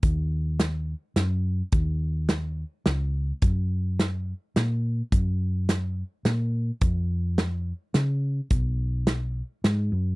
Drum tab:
HH |x-x-x-|x-x-x-|x-x-x-|x-x-x-|
SD |--o-o-|--o-o-|--o-o-|--o-o-|
BD |o-----|o-----|o-----|o-----|

HH |x-x-x-|x-x-x-|
SD |--o-o-|--o-o-|
BD |o-----|o-----|